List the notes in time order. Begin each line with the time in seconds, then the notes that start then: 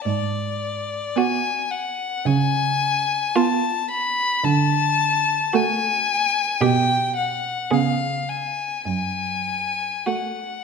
0.05 G#2 D5
1.16 B3 F#4 G#5
1.71 F#5
2.25 C#3 G#5
3.36 B3 F4 A5
3.91 B5
4.44 D3 A5
5.53 A3 F#4 G#5
6.60 B2 B3 G4 G5
7.17 F#5
7.71 C#3 B3 G#4 F5
8.29 G#5
8.85 F#2 G#5
10.06 A3 F#4 F#5